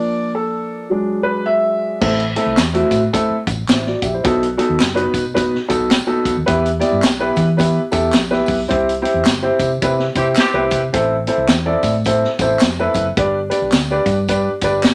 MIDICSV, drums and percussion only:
0, 0, Header, 1, 2, 480
1, 0, Start_track
1, 0, Tempo, 557621
1, 1736, Time_signature, 4, 2, 24, 8
1, 12861, End_track
2, 0, Start_track
2, 0, Title_t, "Drums"
2, 1734, Note_on_c, 9, 49, 100
2, 1735, Note_on_c, 9, 36, 110
2, 1737, Note_on_c, 9, 54, 37
2, 1738, Note_on_c, 9, 62, 50
2, 1820, Note_off_c, 9, 49, 0
2, 1821, Note_off_c, 9, 36, 0
2, 1823, Note_off_c, 9, 54, 0
2, 1825, Note_off_c, 9, 62, 0
2, 1891, Note_on_c, 9, 42, 55
2, 1977, Note_off_c, 9, 42, 0
2, 2032, Note_on_c, 9, 42, 79
2, 2041, Note_on_c, 9, 62, 51
2, 2118, Note_off_c, 9, 42, 0
2, 2127, Note_off_c, 9, 62, 0
2, 2209, Note_on_c, 9, 63, 68
2, 2213, Note_on_c, 9, 38, 110
2, 2215, Note_on_c, 9, 39, 119
2, 2215, Note_on_c, 9, 54, 121
2, 2222, Note_on_c, 9, 42, 88
2, 2295, Note_off_c, 9, 63, 0
2, 2299, Note_off_c, 9, 38, 0
2, 2301, Note_off_c, 9, 39, 0
2, 2301, Note_off_c, 9, 54, 0
2, 2308, Note_off_c, 9, 42, 0
2, 2363, Note_on_c, 9, 42, 55
2, 2449, Note_off_c, 9, 42, 0
2, 2505, Note_on_c, 9, 36, 86
2, 2506, Note_on_c, 9, 54, 60
2, 2512, Note_on_c, 9, 42, 75
2, 2592, Note_off_c, 9, 36, 0
2, 2592, Note_off_c, 9, 54, 0
2, 2598, Note_off_c, 9, 42, 0
2, 2701, Note_on_c, 9, 36, 91
2, 2703, Note_on_c, 9, 54, 59
2, 2706, Note_on_c, 9, 42, 93
2, 2707, Note_on_c, 9, 62, 56
2, 2787, Note_off_c, 9, 36, 0
2, 2789, Note_off_c, 9, 54, 0
2, 2792, Note_off_c, 9, 42, 0
2, 2793, Note_off_c, 9, 62, 0
2, 2988, Note_on_c, 9, 36, 94
2, 2988, Note_on_c, 9, 42, 78
2, 2996, Note_on_c, 9, 54, 64
2, 3074, Note_off_c, 9, 36, 0
2, 3074, Note_off_c, 9, 42, 0
2, 3082, Note_off_c, 9, 54, 0
2, 3173, Note_on_c, 9, 39, 101
2, 3173, Note_on_c, 9, 54, 102
2, 3177, Note_on_c, 9, 38, 110
2, 3180, Note_on_c, 9, 42, 84
2, 3185, Note_on_c, 9, 63, 74
2, 3259, Note_off_c, 9, 39, 0
2, 3259, Note_off_c, 9, 54, 0
2, 3263, Note_off_c, 9, 38, 0
2, 3266, Note_off_c, 9, 42, 0
2, 3271, Note_off_c, 9, 63, 0
2, 3327, Note_on_c, 9, 38, 34
2, 3336, Note_on_c, 9, 63, 73
2, 3413, Note_off_c, 9, 38, 0
2, 3422, Note_off_c, 9, 63, 0
2, 3461, Note_on_c, 9, 42, 76
2, 3462, Note_on_c, 9, 36, 99
2, 3474, Note_on_c, 9, 54, 71
2, 3547, Note_off_c, 9, 42, 0
2, 3548, Note_off_c, 9, 36, 0
2, 3560, Note_off_c, 9, 54, 0
2, 3654, Note_on_c, 9, 42, 89
2, 3654, Note_on_c, 9, 62, 51
2, 3656, Note_on_c, 9, 36, 117
2, 3661, Note_on_c, 9, 54, 39
2, 3740, Note_off_c, 9, 42, 0
2, 3741, Note_off_c, 9, 62, 0
2, 3742, Note_off_c, 9, 36, 0
2, 3748, Note_off_c, 9, 54, 0
2, 3812, Note_on_c, 9, 42, 58
2, 3898, Note_off_c, 9, 42, 0
2, 3950, Note_on_c, 9, 42, 77
2, 3953, Note_on_c, 9, 62, 52
2, 4036, Note_off_c, 9, 42, 0
2, 4039, Note_off_c, 9, 62, 0
2, 4130, Note_on_c, 9, 63, 71
2, 4132, Note_on_c, 9, 39, 113
2, 4132, Note_on_c, 9, 54, 113
2, 4135, Note_on_c, 9, 38, 114
2, 4144, Note_on_c, 9, 42, 90
2, 4216, Note_off_c, 9, 63, 0
2, 4218, Note_off_c, 9, 39, 0
2, 4218, Note_off_c, 9, 54, 0
2, 4221, Note_off_c, 9, 38, 0
2, 4230, Note_off_c, 9, 42, 0
2, 4278, Note_on_c, 9, 42, 59
2, 4364, Note_off_c, 9, 42, 0
2, 4423, Note_on_c, 9, 36, 84
2, 4426, Note_on_c, 9, 42, 74
2, 4428, Note_on_c, 9, 54, 63
2, 4509, Note_off_c, 9, 36, 0
2, 4512, Note_off_c, 9, 42, 0
2, 4514, Note_off_c, 9, 54, 0
2, 4619, Note_on_c, 9, 36, 90
2, 4620, Note_on_c, 9, 54, 60
2, 4625, Note_on_c, 9, 62, 56
2, 4626, Note_on_c, 9, 42, 95
2, 4705, Note_off_c, 9, 36, 0
2, 4706, Note_off_c, 9, 54, 0
2, 4711, Note_off_c, 9, 62, 0
2, 4713, Note_off_c, 9, 42, 0
2, 4774, Note_on_c, 9, 38, 36
2, 4860, Note_off_c, 9, 38, 0
2, 4905, Note_on_c, 9, 36, 90
2, 4906, Note_on_c, 9, 42, 78
2, 4914, Note_on_c, 9, 54, 67
2, 4991, Note_off_c, 9, 36, 0
2, 4992, Note_off_c, 9, 42, 0
2, 5000, Note_off_c, 9, 54, 0
2, 5086, Note_on_c, 9, 38, 115
2, 5089, Note_on_c, 9, 39, 105
2, 5089, Note_on_c, 9, 42, 79
2, 5089, Note_on_c, 9, 54, 101
2, 5095, Note_on_c, 9, 63, 73
2, 5172, Note_off_c, 9, 38, 0
2, 5175, Note_off_c, 9, 39, 0
2, 5175, Note_off_c, 9, 42, 0
2, 5175, Note_off_c, 9, 54, 0
2, 5181, Note_off_c, 9, 63, 0
2, 5258, Note_on_c, 9, 63, 73
2, 5344, Note_off_c, 9, 63, 0
2, 5383, Note_on_c, 9, 36, 94
2, 5386, Note_on_c, 9, 42, 78
2, 5393, Note_on_c, 9, 54, 68
2, 5469, Note_off_c, 9, 36, 0
2, 5472, Note_off_c, 9, 42, 0
2, 5479, Note_off_c, 9, 54, 0
2, 5569, Note_on_c, 9, 62, 51
2, 5574, Note_on_c, 9, 42, 85
2, 5577, Note_on_c, 9, 36, 108
2, 5578, Note_on_c, 9, 54, 37
2, 5655, Note_off_c, 9, 62, 0
2, 5660, Note_off_c, 9, 42, 0
2, 5663, Note_off_c, 9, 36, 0
2, 5664, Note_off_c, 9, 54, 0
2, 5730, Note_on_c, 9, 42, 58
2, 5816, Note_off_c, 9, 42, 0
2, 5865, Note_on_c, 9, 42, 78
2, 5868, Note_on_c, 9, 54, 40
2, 5876, Note_on_c, 9, 62, 53
2, 5951, Note_off_c, 9, 42, 0
2, 5954, Note_off_c, 9, 54, 0
2, 5962, Note_off_c, 9, 62, 0
2, 6047, Note_on_c, 9, 39, 120
2, 6047, Note_on_c, 9, 54, 111
2, 6051, Note_on_c, 9, 63, 67
2, 6055, Note_on_c, 9, 38, 111
2, 6064, Note_on_c, 9, 42, 95
2, 6133, Note_off_c, 9, 39, 0
2, 6133, Note_off_c, 9, 54, 0
2, 6137, Note_off_c, 9, 63, 0
2, 6141, Note_off_c, 9, 38, 0
2, 6151, Note_off_c, 9, 42, 0
2, 6336, Note_on_c, 9, 54, 62
2, 6343, Note_on_c, 9, 36, 87
2, 6344, Note_on_c, 9, 42, 73
2, 6351, Note_on_c, 9, 62, 33
2, 6422, Note_off_c, 9, 54, 0
2, 6429, Note_off_c, 9, 36, 0
2, 6430, Note_off_c, 9, 42, 0
2, 6437, Note_off_c, 9, 62, 0
2, 6530, Note_on_c, 9, 54, 59
2, 6540, Note_on_c, 9, 36, 87
2, 6545, Note_on_c, 9, 42, 93
2, 6547, Note_on_c, 9, 62, 56
2, 6616, Note_off_c, 9, 54, 0
2, 6626, Note_off_c, 9, 36, 0
2, 6631, Note_off_c, 9, 42, 0
2, 6633, Note_off_c, 9, 62, 0
2, 6815, Note_on_c, 9, 54, 70
2, 6823, Note_on_c, 9, 42, 80
2, 6825, Note_on_c, 9, 36, 92
2, 6901, Note_off_c, 9, 54, 0
2, 6909, Note_off_c, 9, 42, 0
2, 6911, Note_off_c, 9, 36, 0
2, 6995, Note_on_c, 9, 39, 104
2, 6995, Note_on_c, 9, 54, 101
2, 7005, Note_on_c, 9, 38, 105
2, 7008, Note_on_c, 9, 42, 84
2, 7016, Note_on_c, 9, 63, 68
2, 7081, Note_off_c, 9, 39, 0
2, 7081, Note_off_c, 9, 54, 0
2, 7092, Note_off_c, 9, 38, 0
2, 7094, Note_off_c, 9, 42, 0
2, 7102, Note_off_c, 9, 63, 0
2, 7165, Note_on_c, 9, 38, 35
2, 7175, Note_on_c, 9, 63, 70
2, 7251, Note_off_c, 9, 38, 0
2, 7261, Note_off_c, 9, 63, 0
2, 7284, Note_on_c, 9, 54, 68
2, 7302, Note_on_c, 9, 36, 99
2, 7304, Note_on_c, 9, 46, 57
2, 7370, Note_off_c, 9, 54, 0
2, 7388, Note_off_c, 9, 36, 0
2, 7390, Note_off_c, 9, 46, 0
2, 7478, Note_on_c, 9, 54, 39
2, 7494, Note_on_c, 9, 62, 49
2, 7495, Note_on_c, 9, 36, 109
2, 7496, Note_on_c, 9, 42, 81
2, 7564, Note_off_c, 9, 54, 0
2, 7580, Note_off_c, 9, 62, 0
2, 7581, Note_off_c, 9, 36, 0
2, 7582, Note_off_c, 9, 42, 0
2, 7652, Note_on_c, 9, 42, 57
2, 7738, Note_off_c, 9, 42, 0
2, 7792, Note_on_c, 9, 42, 78
2, 7796, Note_on_c, 9, 62, 52
2, 7878, Note_off_c, 9, 42, 0
2, 7882, Note_off_c, 9, 62, 0
2, 7961, Note_on_c, 9, 39, 115
2, 7961, Note_on_c, 9, 54, 111
2, 7971, Note_on_c, 9, 38, 118
2, 7977, Note_on_c, 9, 63, 71
2, 7981, Note_on_c, 9, 42, 91
2, 8047, Note_off_c, 9, 39, 0
2, 8047, Note_off_c, 9, 54, 0
2, 8057, Note_off_c, 9, 38, 0
2, 8063, Note_off_c, 9, 63, 0
2, 8067, Note_off_c, 9, 42, 0
2, 8257, Note_on_c, 9, 54, 62
2, 8259, Note_on_c, 9, 36, 89
2, 8263, Note_on_c, 9, 42, 70
2, 8343, Note_off_c, 9, 54, 0
2, 8345, Note_off_c, 9, 36, 0
2, 8349, Note_off_c, 9, 42, 0
2, 8452, Note_on_c, 9, 42, 94
2, 8452, Note_on_c, 9, 54, 60
2, 8455, Note_on_c, 9, 36, 93
2, 8469, Note_on_c, 9, 62, 58
2, 8538, Note_off_c, 9, 42, 0
2, 8538, Note_off_c, 9, 54, 0
2, 8541, Note_off_c, 9, 36, 0
2, 8555, Note_off_c, 9, 62, 0
2, 8599, Note_on_c, 9, 38, 38
2, 8685, Note_off_c, 9, 38, 0
2, 8739, Note_on_c, 9, 42, 76
2, 8740, Note_on_c, 9, 54, 67
2, 8743, Note_on_c, 9, 36, 93
2, 8826, Note_off_c, 9, 42, 0
2, 8826, Note_off_c, 9, 54, 0
2, 8829, Note_off_c, 9, 36, 0
2, 8916, Note_on_c, 9, 39, 100
2, 8916, Note_on_c, 9, 54, 100
2, 8929, Note_on_c, 9, 38, 116
2, 8932, Note_on_c, 9, 42, 85
2, 8941, Note_on_c, 9, 63, 69
2, 9002, Note_off_c, 9, 39, 0
2, 9002, Note_off_c, 9, 54, 0
2, 9015, Note_off_c, 9, 38, 0
2, 9018, Note_off_c, 9, 42, 0
2, 9027, Note_off_c, 9, 63, 0
2, 9097, Note_on_c, 9, 63, 72
2, 9183, Note_off_c, 9, 63, 0
2, 9216, Note_on_c, 9, 54, 67
2, 9222, Note_on_c, 9, 36, 98
2, 9226, Note_on_c, 9, 42, 78
2, 9302, Note_off_c, 9, 54, 0
2, 9308, Note_off_c, 9, 36, 0
2, 9312, Note_off_c, 9, 42, 0
2, 9413, Note_on_c, 9, 42, 89
2, 9415, Note_on_c, 9, 36, 107
2, 9418, Note_on_c, 9, 62, 49
2, 9500, Note_off_c, 9, 42, 0
2, 9501, Note_off_c, 9, 36, 0
2, 9505, Note_off_c, 9, 62, 0
2, 9701, Note_on_c, 9, 42, 78
2, 9718, Note_on_c, 9, 62, 50
2, 9787, Note_off_c, 9, 42, 0
2, 9804, Note_off_c, 9, 62, 0
2, 9884, Note_on_c, 9, 38, 119
2, 9888, Note_on_c, 9, 39, 113
2, 9888, Note_on_c, 9, 54, 118
2, 9892, Note_on_c, 9, 63, 68
2, 9894, Note_on_c, 9, 42, 89
2, 9970, Note_off_c, 9, 38, 0
2, 9974, Note_off_c, 9, 39, 0
2, 9974, Note_off_c, 9, 54, 0
2, 9978, Note_off_c, 9, 63, 0
2, 9980, Note_off_c, 9, 42, 0
2, 10181, Note_on_c, 9, 54, 61
2, 10183, Note_on_c, 9, 36, 88
2, 10191, Note_on_c, 9, 42, 76
2, 10193, Note_on_c, 9, 62, 33
2, 10267, Note_off_c, 9, 54, 0
2, 10270, Note_off_c, 9, 36, 0
2, 10278, Note_off_c, 9, 42, 0
2, 10279, Note_off_c, 9, 62, 0
2, 10368, Note_on_c, 9, 54, 57
2, 10379, Note_on_c, 9, 36, 89
2, 10383, Note_on_c, 9, 42, 92
2, 10391, Note_on_c, 9, 62, 52
2, 10454, Note_off_c, 9, 54, 0
2, 10465, Note_off_c, 9, 36, 0
2, 10469, Note_off_c, 9, 42, 0
2, 10478, Note_off_c, 9, 62, 0
2, 10535, Note_on_c, 9, 38, 39
2, 10621, Note_off_c, 9, 38, 0
2, 10664, Note_on_c, 9, 54, 66
2, 10666, Note_on_c, 9, 36, 92
2, 10666, Note_on_c, 9, 42, 78
2, 10750, Note_off_c, 9, 54, 0
2, 10752, Note_off_c, 9, 36, 0
2, 10752, Note_off_c, 9, 42, 0
2, 10841, Note_on_c, 9, 39, 102
2, 10841, Note_on_c, 9, 54, 106
2, 10857, Note_on_c, 9, 38, 112
2, 10860, Note_on_c, 9, 42, 85
2, 10865, Note_on_c, 9, 63, 70
2, 10927, Note_off_c, 9, 39, 0
2, 10927, Note_off_c, 9, 54, 0
2, 10943, Note_off_c, 9, 38, 0
2, 10946, Note_off_c, 9, 42, 0
2, 10951, Note_off_c, 9, 63, 0
2, 11024, Note_on_c, 9, 63, 73
2, 11110, Note_off_c, 9, 63, 0
2, 11140, Note_on_c, 9, 54, 73
2, 11144, Note_on_c, 9, 36, 92
2, 11149, Note_on_c, 9, 42, 78
2, 11226, Note_off_c, 9, 54, 0
2, 11230, Note_off_c, 9, 36, 0
2, 11235, Note_off_c, 9, 42, 0
2, 11338, Note_on_c, 9, 36, 117
2, 11338, Note_on_c, 9, 62, 49
2, 11339, Note_on_c, 9, 42, 85
2, 11424, Note_off_c, 9, 36, 0
2, 11424, Note_off_c, 9, 62, 0
2, 11425, Note_off_c, 9, 42, 0
2, 11631, Note_on_c, 9, 42, 80
2, 11632, Note_on_c, 9, 62, 53
2, 11633, Note_on_c, 9, 54, 39
2, 11717, Note_off_c, 9, 42, 0
2, 11718, Note_off_c, 9, 62, 0
2, 11719, Note_off_c, 9, 54, 0
2, 11805, Note_on_c, 9, 63, 69
2, 11810, Note_on_c, 9, 39, 119
2, 11810, Note_on_c, 9, 54, 115
2, 11816, Note_on_c, 9, 38, 113
2, 11826, Note_on_c, 9, 42, 95
2, 11891, Note_off_c, 9, 63, 0
2, 11896, Note_off_c, 9, 39, 0
2, 11896, Note_off_c, 9, 54, 0
2, 11902, Note_off_c, 9, 38, 0
2, 11912, Note_off_c, 9, 42, 0
2, 12101, Note_on_c, 9, 54, 61
2, 12102, Note_on_c, 9, 36, 91
2, 12104, Note_on_c, 9, 42, 74
2, 12187, Note_off_c, 9, 54, 0
2, 12188, Note_off_c, 9, 36, 0
2, 12190, Note_off_c, 9, 42, 0
2, 12292, Note_on_c, 9, 54, 59
2, 12298, Note_on_c, 9, 36, 87
2, 12300, Note_on_c, 9, 42, 94
2, 12301, Note_on_c, 9, 62, 54
2, 12378, Note_off_c, 9, 54, 0
2, 12384, Note_off_c, 9, 36, 0
2, 12386, Note_off_c, 9, 42, 0
2, 12387, Note_off_c, 9, 62, 0
2, 12579, Note_on_c, 9, 42, 81
2, 12582, Note_on_c, 9, 54, 66
2, 12584, Note_on_c, 9, 36, 95
2, 12665, Note_off_c, 9, 42, 0
2, 12668, Note_off_c, 9, 54, 0
2, 12670, Note_off_c, 9, 36, 0
2, 12769, Note_on_c, 9, 39, 104
2, 12769, Note_on_c, 9, 54, 101
2, 12773, Note_on_c, 9, 63, 72
2, 12776, Note_on_c, 9, 38, 114
2, 12778, Note_on_c, 9, 42, 84
2, 12855, Note_off_c, 9, 39, 0
2, 12855, Note_off_c, 9, 54, 0
2, 12859, Note_off_c, 9, 63, 0
2, 12861, Note_off_c, 9, 38, 0
2, 12861, Note_off_c, 9, 42, 0
2, 12861, End_track
0, 0, End_of_file